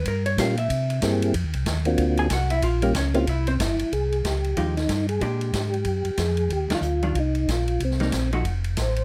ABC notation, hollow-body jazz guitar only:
X:1
M:4/4
L:1/8
Q:"Swing" 1/4=186
K:Fm
V:1 name="Hollow-body jazz guitar"
B d f =e4- e | z4 z [Aa] [^F^f] [=E=e] | [Ff] [B,B] [Dd] [Ff] [=E=e] [Cc] z2 | z4 [F,A,EG] z3 |
[A,=DG]3 z4 z | z [E,G,=DF] z [E,G,DF] z4 | z [G,B,E] z [F,=A,E_G] z4 |]